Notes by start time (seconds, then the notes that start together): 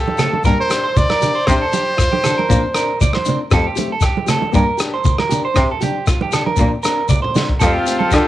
Already playing: G4 A4
0.08 high conga
0.18 A3 C4 G4 A4, cross-stick, closed hi-hat, low conga, shekere
0.33 high conga
0.43 G2 A#3 D4 G4 A#4, kick, shekere
0.60 C5
0.70 D4 G4, cross-stick, closed hi-hat, shekere
0.84 C5
0.96 D5, kick, low conga, shekere
1.10 A#4, cross-stick, high conga
1.21 D4 G4, closed hi-hat, low conga, shekere
1.35 C5
1.46 C3 C4 D4 C5, kick, cross-stick, shekere
1.50 G4
1.61 A4
1.73 D4 G4, closed hi-hat, high conga, shekere
1.97 F4, kick, cross-stick, shekere
2.12 G4, high conga
2.24 D4 G4 A4, cross-stick, closed hi-hat, low conga, shekere
2.38 A#4, high conga
2.48 A#2 F3 C4 D4, kick, shekere
2.75 C4 D4 A#4, cross-stick, closed hi-hat, shekere
3.01 D5, kick, low conga, shekere
3.13 C5, cross-stick, high conga
3.25 C4 D4, closed hi-hat, low conga, shekere
3.50 F2 F3 A3 C4 G4 A4, kick, cross-stick, shekere
3.66 G4
3.76 A3 C4 G4, closed hi-hat, high conga, shekere
3.92 A4
4.01 G4, kick, cross-stick, shekere
4.17 high conga
4.26 A3 C4 G4 A4, cross-stick, closed hi-hat, low conga, shekere
4.42 high conga
4.52 G2 A#3 D4 G4 A#4, kick, shekere
4.77 D4 G4, cross-stick, closed hi-hat, shekere
4.94 C5
5.05 kick, low conga, shekere
5.18 A#4, cross-stick, high conga
5.29 D4 G4, closed hi-hat, low conga, shekere
5.45 C5
5.54 C3 C4 G4, muted nylon-string guitar stroke, kick, cross-stick, shekere
5.71 A4
5.80 D4 G4, closed hi-hat, high conga, low conga, shekere
6.07 F4, kick, cross-stick, shekere
6.21 G4, high conga
6.32 D4 G4 A4, cross-stick, closed hi-hat, low conga, shekere
6.46 A#4, high conga
6.57 A#2 F3 C4 D4, kick, shekere
6.83 C4 D4 A#4, cross-stick, closed hi-hat, shekere
7.09 D5, kick, high tom, low conga, shekere
7.22 C5, mid tom
7.35 C4 D4, snare, high conga, low conga, shekere
7.49 kick
7.60 F2 F3 A3 F4 G4 A4 F5 G5 A5, muted nylon-string guitar stroke, kick, cross-stick, shekere
7.65 C4
7.73 G4
7.85 A3 C4 G4, closed hi-hat, shekere
7.99 A4, high conga
8.09 D3 G4, kick, shekere
8.14 F4 A4, cross-stick